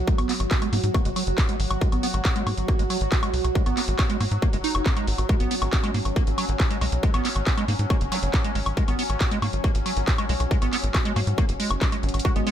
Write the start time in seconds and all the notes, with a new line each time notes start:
Already playing: F#3 F#4
0.07 G#3, kick, closed hi-hat
0.18 G#1 B3, closed hi-hat, high woodblock
0.29 B3, clap, open hi-hat
0.40 G#1, closed hi-hat, high woodblock
0.51 kick, clap, closed hi-hat
0.62 G#3, closed hi-hat, high woodblock
0.73 G#2 A#3, open hi-hat
0.84 G#2, closed hi-hat
0.94 A#3, kick, closed hi-hat, high woodblock
1.05 F#1 G#3, closed hi-hat
1.16 F#3, open hi-hat, high woodblock
1.27 F#1, closed hi-hat
1.38 kick, clap, closed hi-hat, high woodblock
1.49 G#3, closed hi-hat
1.60 G#1, open hi-hat
1.71 G#1, closed hi-hat, high woodblock
1.81 G#3, kick, closed hi-hat
1.92 G#1 B3, closed hi-hat, high woodblock
2.03 B3, open hi-hat
2.14 G#1, closed hi-hat, high woodblock
2.25 kick, clap, closed hi-hat
2.36 G#3, closed hi-hat
2.47 G#2 A#3, open hi-hat, high woodblock
2.58 G#1, closed hi-hat
2.68 A#3, kick, closed hi-hat, high woodblock
2.79 G#1 G#3, closed hi-hat
2.90 F#3, open hi-hat, high woodblock
3.01 G#1, closed hi-hat
3.12 kick, clap, closed hi-hat
3.23 G#3, closed hi-hat, high woodblock
3.34 B1, open hi-hat
3.44 B1, closed hi-hat, high woodblock
3.55 G#3, kick, closed hi-hat
3.66 G#1 B3, closed hi-hat, high woodblock
3.77 B3, clap, open hi-hat
3.88 G#1, closed hi-hat
3.99 kick, clap, closed hi-hat, high woodblock
4.10 G#3, closed hi-hat
4.21 G#2 A#3, open hi-hat, high woodblock
4.31 G#2, closed hi-hat
4.42 A#3, kick, closed hi-hat, high woodblock
4.53 F#1 G#3, closed hi-hat
4.64 D#4, open hi-hat
4.75 F#1, closed hi-hat, high woodblock
4.86 B3, kick, clap, closed hi-hat
4.97 G#3, closed hi-hat, high woodblock
5.07 G#1, open hi-hat
5.18 G#1, closed hi-hat, high woodblock
5.29 G#3 C#4, kick, closed hi-hat, high woodblock
5.40 G#1 B3, closed hi-hat
5.51 B3, open hi-hat
5.62 G#1, closed hi-hat, high woodblock
5.73 kick, clap, closed hi-hat
5.84 G#3, closed hi-hat, high woodblock
5.94 G#2 A#3, open hi-hat
6.05 G#1, closed hi-hat, high woodblock
6.16 A#3, kick, closed hi-hat
6.27 G#1, closed hi-hat
6.38 F#3, open hi-hat, high woodblock
6.49 G#1, closed hi-hat
6.60 kick, clap, closed hi-hat, high woodblock
6.70 G#3, closed hi-hat
6.81 B1 G#3, open hi-hat, high woodblock
6.92 B1, closed hi-hat
7.03 G#3, kick, closed hi-hat
7.14 G#1 B3, closed hi-hat, high woodblock
7.25 B3, clap, open hi-hat
7.36 G#1, closed hi-hat, high woodblock
7.47 kick, clap, closed hi-hat
7.58 G#3, closed hi-hat, high woodblock
7.68 G#2 A#3, open hi-hat
7.79 G#2, closed hi-hat
7.90 A#3, kick, closed hi-hat, high woodblock
8.01 F#1, closed hi-hat
8.12 F#3, open hi-hat, zap, high woodblock
8.23 F#1, closed hi-hat
8.34 kick, clap, closed hi-hat, high woodblock
8.44 G#3, closed hi-hat
8.55 G#1 G#3, open hi-hat
8.66 G#1, closed hi-hat, high woodblock
8.77 G#3, kick, closed hi-hat
8.88 G#1 B3, closed hi-hat, high woodblock
8.99 B3, open hi-hat
9.10 G#1, closed hi-hat, high woodblock
9.21 kick, clap, closed hi-hat
9.31 G#3, closed hi-hat
9.42 G#2 A#3, open hi-hat, high woodblock
9.53 G#1, closed hi-hat
9.64 A#3, kick, closed hi-hat, high woodblock
9.75 G#1, closed hi-hat
9.86 F#3, open hi-hat, high woodblock
9.97 G#1, closed hi-hat
10.08 kick, clap, closed hi-hat
10.18 G#3, closed hi-hat, high woodblock
10.29 B1 G#3, open hi-hat
10.40 B1, closed hi-hat, high woodblock
10.51 G#3, kick, closed hi-hat
10.62 G#1 B3, closed hi-hat, high woodblock
10.73 B3, clap, open hi-hat
10.84 G#1, closed hi-hat
10.94 kick, clap, closed hi-hat, high woodblock
11.05 G#3, closed hi-hat
11.16 G#2 A#3, open hi-hat, high woodblock
11.27 G#2, closed hi-hat
11.38 A#3, kick, closed hi-hat, high woodblock
11.49 F#1, closed hi-hat
11.60 G#3, open hi-hat
11.71 F#1, closed hi-hat, high woodblock
11.81 G#3, kick, clap, closed hi-hat
11.92 G#3, closed hi-hat, high woodblock
12.03 G#1, closed hi-hat
12.09 closed hi-hat
12.14 G#1, closed hi-hat, high woodblock
12.19 closed hi-hat
12.25 G#3 C#4 F#4, kick, high woodblock
12.36 G#1 G#3 B3, closed hi-hat
12.47 G#3 B3, open hi-hat